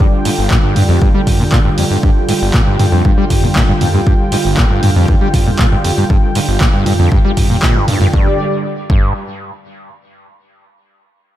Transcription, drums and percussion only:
0.00 kick loud
0.25 open hi-hat loud
0.51 kick loud
0.51 clap loud
0.76 mid tom medium
0.76 open hi-hat loud
1.02 kick loud
1.27 kick medium
1.27 mid tom loud
1.27 open hi-hat loud
1.52 kick loud
1.52 clap loud
1.78 open hi-hat loud
2.03 kick loud
2.29 open hi-hat loud
2.54 kick loud
2.54 clap loud
2.79 mid tom medium
2.79 open hi-hat loud
3.05 kick loud
3.30 kick medium
3.30 mid tom loud
3.30 open hi-hat loud
3.56 kick loud
3.56 clap loud
3.81 mid tom medium
3.81 open hi-hat loud
4.07 kick loud
4.32 open hi-hat loud
4.57 kick loud
4.57 clap loud
4.83 mid tom medium
4.83 open hi-hat loud
5.08 kick loud
5.34 kick medium
5.34 mid tom loud
5.34 open hi-hat loud
5.59 kick loud
5.59 clap loud
5.84 open hi-hat loud
6.10 kick loud
6.35 open hi-hat loud
6.61 kick loud
6.61 clap loud
6.86 mid tom medium
6.86 open hi-hat loud
7.12 kick loud
7.37 kick medium
7.37 mid tom medium
7.37 open hi-hat loud
7.62 kick loud
7.62 clap loud
7.88 mid tom medium
7.88 open hi-hat loud
8.14 kick loud
8.90 kick loud

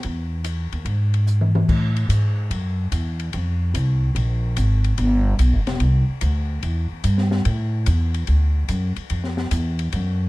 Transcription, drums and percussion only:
0.03 ride medium
0.44 hi-hat pedal medium
0.44 ride medium
0.72 ride soft
0.85 ride medium
1.14 ride soft
1.27 hi-hat pedal medium
1.41 high tom medium
1.55 high tom medium
1.69 kick medium
1.69 crash medium
1.96 ride soft
2.10 hi-hat pedal medium
2.10 ride medium
2.51 ride medium
2.92 hi-hat pedal medium
2.92 ride medium
3.20 ride soft
3.33 ride medium
3.75 hi-hat pedal medium
3.75 ride medium
4.16 ride medium
4.57 hi-hat pedal medium
4.57 ride medium
4.84 ride soft
4.98 ride medium
5.39 hi-hat pedal medium
5.39 ride medium
5.67 snare soft
5.67 ride soft
5.80 ride medium
6.21 hi-hat pedal medium
6.21 ride medium
6.63 ride medium
7.04 hi-hat pedal medium
7.04 ride medium
7.18 snare soft
7.31 snare soft
7.45 ride medium
7.86 hi-hat pedal soft
7.86 ride medium
8.14 ride soft
8.27 ride medium
8.68 hi-hat pedal medium
8.68 ride medium
8.96 ride soft
9.10 ride medium
9.24 snare soft
9.37 snare soft
9.51 hi-hat pedal medium
9.51 ride medium
9.79 ride soft
9.92 ride medium

